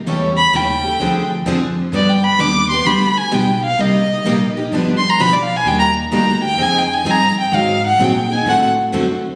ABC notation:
X:1
M:4/4
L:1/16
Q:"Swing" 1/4=129
K:Gphr
V:1 name="Violin"
z2 =b2 g6 z6 | (3d2 g2 =b2 d'2 c'2 b2 a2 g2 f2 | e6 z4 c' b =b d f a | g b z2 b2 g2 (3a2 g2 a2 b2 g2 |
f2 _g2 =g2 a2 ^f2 z6 |]
V:2 name="Steel-string acoustic guitar"
[^C,=E,=A,^CG]2 z2 [C,E,A,CG]2 [A,CG]2 [D,F,=CD_A]2 z2 [D,F,CDA]2 z2 | [D,G,=B,DG]2 z2 [D,G,B,DG]2 [B,DG]2 [D,G,B,DG]2 z2 [D,G,B,DG]2 z2 | [C,G,B,EG]2 z2 [C,G,B,EG]2 [B,EG]2 [D,F,=B,DG]2 z2 [D,F,B,DG]2 z2 | [E,G,B,DG]2 z2 [E,G,B,DG]2 [B,DG]2 [F,CEA]2 z2 [F,CEA]2 z2 |
[E,_G,CEA]2 z2 [E,G,CEA]2 [CEA]2 [D,=A,C^F=A]2 z2 [D,A,CFA]2 z2 |]
V:3 name="Steel-string acoustic guitar"
[^C,G,^C=E=A^c]2 z2 [C,G,CEAc]2 z2 [D,F,=CD_A]2 z2 [D,F,CDA]2 z2 | [D,G,=B,DG]2 z2 [D,G,B,DG]2 z2 [D,G,B,DG]2 z2 [D,G,B,DG]2 z2 | [C,G,B,EG]2 z2 [C,G,B,EG]2 z2 [D,F,=B,DG]2 z2 [D,F,B,DG]2 z2 | [E,G,B,DG]2 z2 [E,G,B,DG]2 z2 [F,CEA]2 z2 [F,CEA]2 z2 |
[E,_G,CEA]2 z2 [E,G,CEA]2 z2 [D,=A,C^F=A]2 z2 [D,A,CFA]2 z2 |]
V:4 name="Upright bass" clef=bass
=E,,4 _E,,4 D,,4 F,,4 | G,,4 E,,4 D,,4 =B,,,4 | C,,4 B,,,4 G,,,4 =B,,,4 | E,,4 D,,4 F,,4 G,,2 z2 |
A,,4 B,,4 =A,,4 ^F,,4 |]